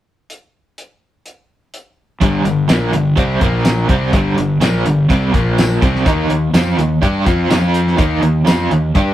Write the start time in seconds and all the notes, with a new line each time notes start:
0.30 closed hi-hat
0.78 closed hi-hat
1.26 closed hi-hat
1.74 closed hi-hat
2.21 G1 G2 D3 G3, kick, closed hi-hat
2.44 G1 G2 D3, closed hi-hat
2.69 A#1 A#2 F3 A#3, snare, closed hi-hat, tambourine
2.93 G1 G2 D3, closed hi-hat
3.17 C2 C3 G3 C4, kick, closed hi-hat
3.41 A#1 A#2 F3 A#3, kick, closed hi-hat
3.65 snare, closed hi-hat, tambourine
3.89 C2 C3 G3 C4, kick, closed hi-hat
4.13 G1 G2 D3 G3, kick, closed hi-hat
4.37 G1 G2 D3, closed hi-hat
4.60 A#1 A#2 F3 A#3, snare, closed hi-hat, tambourine
4.84 G1 G2 D3, closed hi-hat
5.10 C2 C3 G3 C4, kick, closed hi-hat
5.34 A#1 A#2 F3 A#3, kick, closed hi-hat
5.58 snare, closed hi-hat, tambourine
5.82 C2 C3 G3 C4, kick, closed hi-hat
5.96 snare
6.06 D#2 D#3 A#3 D#4, kick, closed hi-hat
6.30 D#2 D#3 A#3, closed hi-hat
6.53 F2 F3 C4 F4, snare, closed hi-hat, tambourine
6.78 D#2 D#3 A#3, closed hi-hat
7.02 G2 G3 D4 G4, kick, closed hi-hat
7.26 F2 F3 C4 F4, kick, closed hi-hat
7.50 F2 F3 C4 F4, snare, closed hi-hat, tambourine
7.74 closed hi-hat
7.87 snare
7.98 D#2 D#3 A#3 D#4, kick, closed hi-hat
8.22 D#2 D#3 A#3, closed hi-hat
8.47 F2 F3 C4 F4, snare, closed hi-hat, tambourine
8.71 D#2 D#3 A#3, closed hi-hat
8.95 G2 G3 D4 G4, kick, closed hi-hat